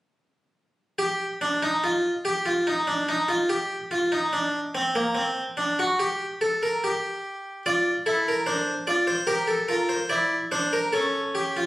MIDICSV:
0, 0, Header, 1, 2, 480
1, 0, Start_track
1, 0, Key_signature, -2, "minor"
1, 0, Tempo, 835655
1, 568, Time_signature, 4, 2, 24, 8
1, 2485, Tempo, 826446
1, 6746, End_track
2, 0, Start_track
2, 0, Title_t, "Harpsichord"
2, 0, Program_c, 0, 6
2, 566, Note_on_c, 0, 67, 75
2, 716, Note_off_c, 0, 67, 0
2, 812, Note_on_c, 0, 62, 70
2, 928, Note_off_c, 0, 62, 0
2, 934, Note_on_c, 0, 63, 70
2, 1049, Note_off_c, 0, 63, 0
2, 1055, Note_on_c, 0, 65, 66
2, 1202, Note_off_c, 0, 65, 0
2, 1293, Note_on_c, 0, 67, 65
2, 1407, Note_off_c, 0, 67, 0
2, 1411, Note_on_c, 0, 65, 66
2, 1526, Note_off_c, 0, 65, 0
2, 1534, Note_on_c, 0, 63, 73
2, 1648, Note_off_c, 0, 63, 0
2, 1651, Note_on_c, 0, 62, 67
2, 1766, Note_off_c, 0, 62, 0
2, 1773, Note_on_c, 0, 63, 65
2, 1886, Note_off_c, 0, 63, 0
2, 1887, Note_on_c, 0, 65, 67
2, 2003, Note_off_c, 0, 65, 0
2, 2007, Note_on_c, 0, 67, 72
2, 2155, Note_off_c, 0, 67, 0
2, 2247, Note_on_c, 0, 65, 65
2, 2362, Note_off_c, 0, 65, 0
2, 2367, Note_on_c, 0, 63, 63
2, 2482, Note_off_c, 0, 63, 0
2, 2487, Note_on_c, 0, 62, 72
2, 2636, Note_off_c, 0, 62, 0
2, 2729, Note_on_c, 0, 60, 71
2, 2844, Note_off_c, 0, 60, 0
2, 2850, Note_on_c, 0, 58, 72
2, 2962, Note_on_c, 0, 60, 70
2, 2964, Note_off_c, 0, 58, 0
2, 3112, Note_off_c, 0, 60, 0
2, 3209, Note_on_c, 0, 62, 71
2, 3324, Note_off_c, 0, 62, 0
2, 3336, Note_on_c, 0, 66, 71
2, 3448, Note_off_c, 0, 66, 0
2, 3454, Note_on_c, 0, 67, 81
2, 3601, Note_off_c, 0, 67, 0
2, 3697, Note_on_c, 0, 69, 76
2, 3809, Note_off_c, 0, 69, 0
2, 3822, Note_on_c, 0, 70, 66
2, 3931, Note_off_c, 0, 70, 0
2, 3944, Note_on_c, 0, 67, 69
2, 4401, Note_off_c, 0, 67, 0
2, 4422, Note_on_c, 0, 65, 65
2, 4422, Note_on_c, 0, 74, 74
2, 4566, Note_off_c, 0, 65, 0
2, 4566, Note_off_c, 0, 74, 0
2, 4655, Note_on_c, 0, 69, 77
2, 4656, Note_on_c, 0, 64, 66
2, 4767, Note_off_c, 0, 69, 0
2, 4783, Note_on_c, 0, 70, 74
2, 4802, Note_off_c, 0, 64, 0
2, 4888, Note_on_c, 0, 62, 66
2, 4889, Note_on_c, 0, 72, 77
2, 4891, Note_off_c, 0, 70, 0
2, 5036, Note_off_c, 0, 62, 0
2, 5036, Note_off_c, 0, 72, 0
2, 5125, Note_on_c, 0, 74, 77
2, 5127, Note_on_c, 0, 65, 64
2, 5241, Note_off_c, 0, 74, 0
2, 5242, Note_on_c, 0, 72, 75
2, 5275, Note_off_c, 0, 65, 0
2, 5356, Note_on_c, 0, 67, 72
2, 5356, Note_on_c, 0, 70, 86
2, 5359, Note_off_c, 0, 72, 0
2, 5476, Note_off_c, 0, 70, 0
2, 5476, Note_on_c, 0, 69, 77
2, 5507, Note_off_c, 0, 67, 0
2, 5596, Note_off_c, 0, 69, 0
2, 5597, Note_on_c, 0, 70, 77
2, 5599, Note_on_c, 0, 65, 64
2, 5717, Note_off_c, 0, 70, 0
2, 5717, Note_on_c, 0, 72, 72
2, 5749, Note_off_c, 0, 65, 0
2, 5835, Note_on_c, 0, 74, 83
2, 5836, Note_off_c, 0, 72, 0
2, 5836, Note_on_c, 0, 64, 65
2, 5986, Note_off_c, 0, 74, 0
2, 5987, Note_off_c, 0, 64, 0
2, 6080, Note_on_c, 0, 62, 69
2, 6081, Note_on_c, 0, 72, 81
2, 6198, Note_off_c, 0, 72, 0
2, 6204, Note_on_c, 0, 70, 75
2, 6229, Note_off_c, 0, 62, 0
2, 6318, Note_on_c, 0, 69, 89
2, 6319, Note_off_c, 0, 70, 0
2, 6323, Note_on_c, 0, 61, 72
2, 6468, Note_off_c, 0, 69, 0
2, 6563, Note_on_c, 0, 67, 85
2, 6679, Note_off_c, 0, 67, 0
2, 6690, Note_on_c, 0, 65, 83
2, 6746, Note_off_c, 0, 61, 0
2, 6746, Note_off_c, 0, 65, 0
2, 6746, End_track
0, 0, End_of_file